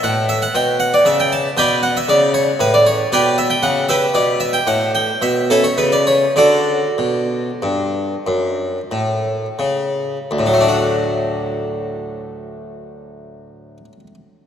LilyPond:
<<
  \new Staff \with { instrumentName = "Harpsichord" } { \time 12/8 \key d \major \tempo 4. = 66 fis''8 e''16 fis''16 g''8 fis''16 d''16 e''16 g''16 a''8 <b' d'' g''>8 fis''16 e''16 d''8 cis''8 b'16 d''16 cis''8 | <g' b' d''>8 e''16 g''16 fis''8 <g' b' e''>8 d''8 e''16 g''16 fis''8 g''8 e''8 <cis' e' a'>16 cis''16 b'16 d''16 cis''8 | <fis' a' d''>1~ <fis' a' d''>8 r4. | <d, a, fis a d' fis'>1. | }
  \new Staff \with { instrumentName = "Harpsichord" } { \clef bass \time 12/8 \key d \major a,4 b,4 cis4 b,4 cis4 a,4 | b,4 cis4 b,4 a,4 b,4 cis4 | d4 b,4 g,4 fis,4 a,4 cis4 | r1. | }
>>